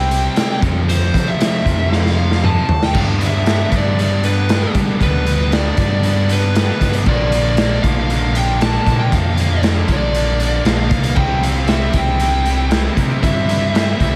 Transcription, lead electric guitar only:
0, 0, Header, 1, 2, 480
1, 0, Start_track
1, 0, Tempo, 514580
1, 825, Time_signature, 4, 2, 24, 8
1, 13207, End_track
2, 0, Start_track
2, 0, Title_t, "Lead electric guitar"
2, 0, Program_c, 0, 29
2, 0, Note_on_c, 0, 79, 87
2, 540, Note_off_c, 0, 79, 0
2, 830, Note_on_c, 0, 72, 91
2, 1196, Note_on_c, 0, 76, 89
2, 1198, Note_off_c, 0, 72, 0
2, 1799, Note_off_c, 0, 76, 0
2, 1803, Note_on_c, 0, 77, 83
2, 2280, Note_on_c, 0, 81, 113
2, 2476, Note_off_c, 0, 77, 0
2, 2643, Note_off_c, 0, 81, 0
2, 2650, Note_on_c, 0, 79, 87
2, 2760, Note_off_c, 0, 79, 0
2, 2776, Note_on_c, 0, 77, 91
2, 2837, Note_off_c, 0, 77, 0
2, 3040, Note_on_c, 0, 76, 105
2, 3506, Note_off_c, 0, 76, 0
2, 3516, Note_on_c, 0, 74, 80
2, 3725, Note_off_c, 0, 74, 0
2, 3737, Note_on_c, 0, 74, 77
2, 3945, Note_off_c, 0, 74, 0
2, 3961, Note_on_c, 0, 71, 66
2, 4400, Note_off_c, 0, 71, 0
2, 4689, Note_on_c, 0, 71, 77
2, 5161, Note_on_c, 0, 74, 80
2, 5171, Note_off_c, 0, 71, 0
2, 5640, Note_off_c, 0, 74, 0
2, 5651, Note_on_c, 0, 74, 76
2, 5885, Note_off_c, 0, 74, 0
2, 5895, Note_on_c, 0, 71, 72
2, 6127, Note_off_c, 0, 71, 0
2, 6148, Note_on_c, 0, 71, 93
2, 6463, Note_off_c, 0, 71, 0
2, 6610, Note_on_c, 0, 74, 103
2, 6968, Note_off_c, 0, 74, 0
2, 6981, Note_on_c, 0, 74, 90
2, 7300, Note_off_c, 0, 74, 0
2, 7304, Note_on_c, 0, 77, 101
2, 7799, Note_off_c, 0, 77, 0
2, 7805, Note_on_c, 0, 79, 100
2, 8037, Note_off_c, 0, 79, 0
2, 8040, Note_on_c, 0, 81, 102
2, 8368, Note_off_c, 0, 81, 0
2, 8392, Note_on_c, 0, 79, 80
2, 8512, Note_off_c, 0, 79, 0
2, 8535, Note_on_c, 0, 77, 92
2, 8968, Note_off_c, 0, 77, 0
2, 9250, Note_on_c, 0, 74, 71
2, 9948, Note_off_c, 0, 74, 0
2, 9952, Note_on_c, 0, 77, 98
2, 10405, Note_on_c, 0, 79, 109
2, 10443, Note_off_c, 0, 77, 0
2, 10660, Note_on_c, 0, 77, 98
2, 10662, Note_off_c, 0, 79, 0
2, 10891, Note_off_c, 0, 77, 0
2, 10894, Note_on_c, 0, 76, 99
2, 11147, Note_off_c, 0, 76, 0
2, 11152, Note_on_c, 0, 79, 87
2, 11831, Note_off_c, 0, 79, 0
2, 12344, Note_on_c, 0, 76, 84
2, 12838, Note_off_c, 0, 76, 0
2, 12868, Note_on_c, 0, 76, 89
2, 13207, Note_off_c, 0, 76, 0
2, 13207, End_track
0, 0, End_of_file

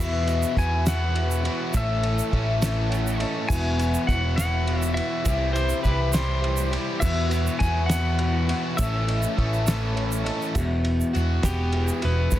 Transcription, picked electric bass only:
0, 0, Header, 1, 2, 480
1, 0, Start_track
1, 0, Tempo, 587659
1, 1420, Time_signature, 6, 3, 24, 8
1, 10123, End_track
2, 0, Start_track
2, 0, Title_t, "Picked electric bass"
2, 0, Program_c, 0, 34
2, 0, Note_on_c, 0, 40, 98
2, 351, Note_off_c, 0, 40, 0
2, 464, Note_on_c, 0, 40, 98
2, 1204, Note_off_c, 0, 40, 0
2, 1423, Note_on_c, 0, 33, 107
2, 1793, Note_off_c, 0, 33, 0
2, 1901, Note_on_c, 0, 33, 89
2, 2642, Note_off_c, 0, 33, 0
2, 2859, Note_on_c, 0, 28, 88
2, 3230, Note_off_c, 0, 28, 0
2, 3335, Note_on_c, 0, 28, 89
2, 4078, Note_off_c, 0, 28, 0
2, 4293, Note_on_c, 0, 36, 101
2, 4666, Note_off_c, 0, 36, 0
2, 4775, Note_on_c, 0, 36, 90
2, 5518, Note_off_c, 0, 36, 0
2, 5733, Note_on_c, 0, 40, 95
2, 6106, Note_off_c, 0, 40, 0
2, 6215, Note_on_c, 0, 40, 96
2, 6959, Note_off_c, 0, 40, 0
2, 7178, Note_on_c, 0, 33, 107
2, 7550, Note_off_c, 0, 33, 0
2, 7662, Note_on_c, 0, 33, 93
2, 8405, Note_off_c, 0, 33, 0
2, 8623, Note_on_c, 0, 28, 92
2, 8994, Note_off_c, 0, 28, 0
2, 9113, Note_on_c, 0, 40, 91
2, 9294, Note_off_c, 0, 40, 0
2, 9342, Note_on_c, 0, 28, 94
2, 9714, Note_off_c, 0, 28, 0
2, 9835, Note_on_c, 0, 28, 80
2, 10017, Note_off_c, 0, 28, 0
2, 10060, Note_on_c, 0, 28, 98
2, 10123, Note_off_c, 0, 28, 0
2, 10123, End_track
0, 0, End_of_file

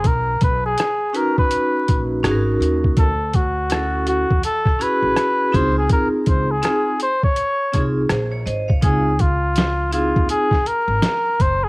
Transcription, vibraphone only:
0, 0, Header, 1, 2, 480
1, 0, Start_track
1, 0, Key_signature, -5, "major"
1, 0, Tempo, 731707
1, 30, Time_signature, 4, 2, 24, 8
1, 7666, End_track
2, 0, Start_track
2, 0, Title_t, "Vibraphone"
2, 0, Program_c, 0, 11
2, 741, Note_on_c, 0, 61, 61
2, 745, Note_on_c, 0, 63, 57
2, 747, Note_on_c, 0, 66, 57
2, 751, Note_on_c, 0, 71, 72
2, 1428, Note_off_c, 0, 61, 0
2, 1430, Note_off_c, 0, 63, 0
2, 1431, Note_off_c, 0, 66, 0
2, 1434, Note_off_c, 0, 71, 0
2, 1463, Note_on_c, 0, 61, 78
2, 1467, Note_on_c, 0, 63, 73
2, 1471, Note_on_c, 0, 66, 73
2, 1476, Note_on_c, 0, 68, 67
2, 1517, Note_on_c, 0, 70, 83
2, 1525, Note_off_c, 0, 68, 0
2, 1947, Note_off_c, 0, 61, 0
2, 1949, Note_off_c, 0, 63, 0
2, 1951, Note_off_c, 0, 66, 0
2, 1973, Note_off_c, 0, 70, 0
2, 2425, Note_on_c, 0, 61, 63
2, 2428, Note_on_c, 0, 64, 54
2, 2433, Note_on_c, 0, 66, 60
2, 2433, Note_on_c, 0, 69, 72
2, 2786, Note_off_c, 0, 61, 0
2, 2787, Note_off_c, 0, 64, 0
2, 2789, Note_off_c, 0, 66, 0
2, 2790, Note_off_c, 0, 69, 0
2, 3143, Note_on_c, 0, 61, 68
2, 3147, Note_on_c, 0, 64, 62
2, 3150, Note_on_c, 0, 66, 67
2, 3155, Note_on_c, 0, 68, 74
2, 3622, Note_on_c, 0, 60, 80
2, 3624, Note_off_c, 0, 68, 0
2, 3626, Note_on_c, 0, 63, 68
2, 3627, Note_off_c, 0, 61, 0
2, 3629, Note_off_c, 0, 64, 0
2, 3629, Note_on_c, 0, 65, 67
2, 3630, Note_off_c, 0, 66, 0
2, 3632, Note_on_c, 0, 68, 81
2, 4224, Note_off_c, 0, 60, 0
2, 4226, Note_off_c, 0, 63, 0
2, 4228, Note_off_c, 0, 65, 0
2, 4229, Note_off_c, 0, 68, 0
2, 4344, Note_on_c, 0, 60, 66
2, 4347, Note_on_c, 0, 63, 60
2, 4351, Note_on_c, 0, 65, 63
2, 4354, Note_on_c, 0, 68, 77
2, 4531, Note_off_c, 0, 60, 0
2, 4533, Note_off_c, 0, 63, 0
2, 4535, Note_off_c, 0, 65, 0
2, 4536, Note_off_c, 0, 68, 0
2, 5066, Note_on_c, 0, 60, 66
2, 5070, Note_on_c, 0, 63, 58
2, 5073, Note_on_c, 0, 65, 55
2, 5077, Note_on_c, 0, 68, 71
2, 5252, Note_off_c, 0, 60, 0
2, 5254, Note_off_c, 0, 63, 0
2, 5256, Note_off_c, 0, 65, 0
2, 5258, Note_off_c, 0, 68, 0
2, 5311, Note_on_c, 0, 72, 56
2, 5313, Note_on_c, 0, 68, 47
2, 5450, Note_off_c, 0, 72, 0
2, 5451, Note_off_c, 0, 68, 0
2, 5455, Note_on_c, 0, 73, 68
2, 5544, Note_off_c, 0, 73, 0
2, 5548, Note_on_c, 0, 75, 67
2, 5550, Note_on_c, 0, 72, 62
2, 5689, Note_off_c, 0, 75, 0
2, 5690, Note_off_c, 0, 72, 0
2, 5695, Note_on_c, 0, 77, 60
2, 5699, Note_on_c, 0, 73, 49
2, 5782, Note_on_c, 0, 60, 63
2, 5786, Note_on_c, 0, 63, 60
2, 5789, Note_on_c, 0, 65, 55
2, 5792, Note_on_c, 0, 68, 68
2, 5924, Note_off_c, 0, 77, 0
2, 5926, Note_off_c, 0, 73, 0
2, 5970, Note_off_c, 0, 60, 0
2, 5972, Note_off_c, 0, 63, 0
2, 5974, Note_off_c, 0, 65, 0
2, 5976, Note_off_c, 0, 68, 0
2, 6501, Note_on_c, 0, 60, 57
2, 6505, Note_on_c, 0, 63, 53
2, 6508, Note_on_c, 0, 64, 43
2, 6512, Note_on_c, 0, 68, 62
2, 6550, Note_on_c, 0, 65, 55
2, 6561, Note_off_c, 0, 64, 0
2, 6863, Note_off_c, 0, 60, 0
2, 6865, Note_off_c, 0, 63, 0
2, 6869, Note_off_c, 0, 68, 0
2, 6888, Note_off_c, 0, 65, 0
2, 7666, End_track
0, 0, End_of_file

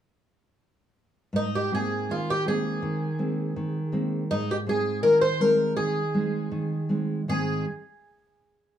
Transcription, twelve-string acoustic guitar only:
0, 0, Header, 1, 2, 480
1, 0, Start_track
1, 0, Key_signature, -4, "major"
1, 0, Tempo, 762389
1, 840, Time_signature, 2, 2, 24, 8
1, 1318, Tempo, 736196
1, 4198, Tempo, 759494
1, 5634, End_track
2, 0, Start_track
2, 0, Title_t, "Twelve-string acoustic guitar"
2, 0, Program_c, 0, 25
2, 856, Note_on_c, 0, 63, 82
2, 972, Note_off_c, 0, 63, 0
2, 978, Note_on_c, 0, 67, 72
2, 1092, Note_off_c, 0, 67, 0
2, 1099, Note_on_c, 0, 68, 72
2, 1330, Note_on_c, 0, 65, 66
2, 1337, Note_off_c, 0, 68, 0
2, 1451, Note_off_c, 0, 65, 0
2, 1455, Note_on_c, 0, 67, 78
2, 1568, Note_off_c, 0, 67, 0
2, 1570, Note_on_c, 0, 68, 72
2, 2500, Note_off_c, 0, 68, 0
2, 2762, Note_on_c, 0, 63, 81
2, 2886, Note_off_c, 0, 63, 0
2, 2894, Note_on_c, 0, 67, 73
2, 2927, Note_off_c, 0, 67, 0
2, 3012, Note_on_c, 0, 68, 69
2, 3230, Note_off_c, 0, 68, 0
2, 3232, Note_on_c, 0, 70, 80
2, 3350, Note_off_c, 0, 70, 0
2, 3352, Note_on_c, 0, 72, 86
2, 3481, Note_off_c, 0, 72, 0
2, 3481, Note_on_c, 0, 70, 76
2, 3709, Note_off_c, 0, 70, 0
2, 3712, Note_on_c, 0, 68, 77
2, 4413, Note_off_c, 0, 68, 0
2, 4694, Note_on_c, 0, 68, 76
2, 4916, Note_off_c, 0, 68, 0
2, 5634, End_track
0, 0, End_of_file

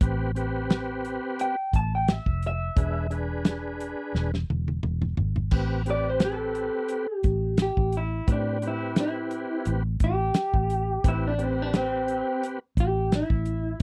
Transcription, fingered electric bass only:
0, 0, Header, 1, 2, 480
1, 0, Start_track
1, 0, Key_signature, 0, "minor"
1, 0, Tempo, 689655
1, 9, Time_signature, 4, 2, 24, 8
1, 9620, End_track
2, 0, Start_track
2, 0, Title_t, "Fingered electric bass"
2, 0, Program_c, 0, 33
2, 10, Note_on_c, 0, 33, 95
2, 817, Note_off_c, 0, 33, 0
2, 1209, Note_on_c, 0, 33, 86
2, 1518, Note_off_c, 0, 33, 0
2, 1574, Note_on_c, 0, 29, 71
2, 1871, Note_off_c, 0, 29, 0
2, 1927, Note_on_c, 0, 28, 97
2, 2735, Note_off_c, 0, 28, 0
2, 2886, Note_on_c, 0, 28, 99
2, 3088, Note_off_c, 0, 28, 0
2, 3132, Note_on_c, 0, 28, 75
2, 3332, Note_off_c, 0, 28, 0
2, 3371, Note_on_c, 0, 28, 75
2, 3585, Note_off_c, 0, 28, 0
2, 3610, Note_on_c, 0, 32, 74
2, 3825, Note_off_c, 0, 32, 0
2, 3845, Note_on_c, 0, 33, 99
2, 4654, Note_off_c, 0, 33, 0
2, 5043, Note_on_c, 0, 33, 86
2, 5355, Note_off_c, 0, 33, 0
2, 5409, Note_on_c, 0, 33, 73
2, 5708, Note_off_c, 0, 33, 0
2, 5763, Note_on_c, 0, 45, 95
2, 6574, Note_off_c, 0, 45, 0
2, 6730, Note_on_c, 0, 33, 103
2, 6931, Note_off_c, 0, 33, 0
2, 6965, Note_on_c, 0, 33, 82
2, 7169, Note_off_c, 0, 33, 0
2, 7335, Note_on_c, 0, 33, 72
2, 7632, Note_off_c, 0, 33, 0
2, 7687, Note_on_c, 0, 33, 96
2, 8497, Note_off_c, 0, 33, 0
2, 8889, Note_on_c, 0, 33, 90
2, 9200, Note_off_c, 0, 33, 0
2, 9258, Note_on_c, 0, 33, 71
2, 9555, Note_off_c, 0, 33, 0
2, 9620, End_track
0, 0, End_of_file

